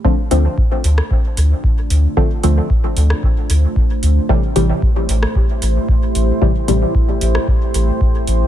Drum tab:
HH |--o---o---o---o-|--o---o---o---o-|--o---o---o---o-|--o---o---o---o-|
SD |-------r--------|-------r--------|-------r--------|-------r--------|
BD |o---o---o---o---|o---o---o---o---|o---o---o---o---|o---o---o---o---|